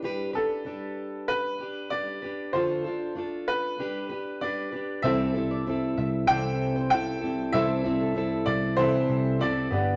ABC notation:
X:1
M:4/4
L:1/16
Q:1/4=96
K:C
V:1 name="Upright piano"
z2 A6 B4 d4 | c4 z2 B6 d4 | e8 g4 g4 | e6 d2 c4 d4 |]
V:2 name="Nylon-string guitar"
z16 | z16 | c z2 d z2 e2 d z2 c2 z3 | c2 z A3 z4 G2 G3 z |]
V:3 name="Grand piano"
z16 | z16 | [CAe]6 z2 [CAc]6 z2 | [CAe]6 z2 [CAe]6 [B,Gd]2 |]
V:4 name="Steel-string acoustic guitar"
[G,DGB]2 [DGB]2 [G,DGB]6 [DGB]2 [G,DGB]2 [DGB]2 | [D,A,DFA]2 [DFA]2 [A,DFA]4 [G,DGB]2 [DGB]2 [G,DGB]2 [DGB]2 | [C,E,G,CEA]2 [G,CEA]2 [G,CEA]4 [C,E,G,CEA]4 [G,CEA]2 [G,CEA]2 | [C,E,G,CEA]2 [G,CEA]2 [G,CEA]4 [C,E,G,CEA]4 [G,CEA]2 [DGB]2 |]
V:5 name="Fingered electric bass" clef=bass
z16 | z16 | C,,6 C,,2 C,,8 | C,,6 C,,4 C,,4 G,,,2 |]